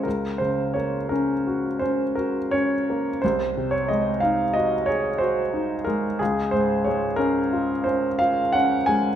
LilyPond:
\new Staff \with { instrumentName = "Grand piano" } { \time 9/8 \key des \major \tempo 4. = 60 << { bes'8 c''8 des''8 bes'4 c''8 bes'8 des''4 | c''8. des''16 ees''8 f''8 ees''8 des''8 c''4 bes'8 | aes'8 c''8 des''8 bes'4 c''8 f''8 ges''8 aes''8 | } \\ { des,8 des8 bes8 des'8 ges'8 des'8 ges'8 des'8 bes8 | c,8 c8 aes8 ees'8 ges'8 aes'8 ges'8 ees'8 aes8 | des,8 aes,8 aes8 des'8 f'8 des'8 f'8 des'8 aes8 | } >> }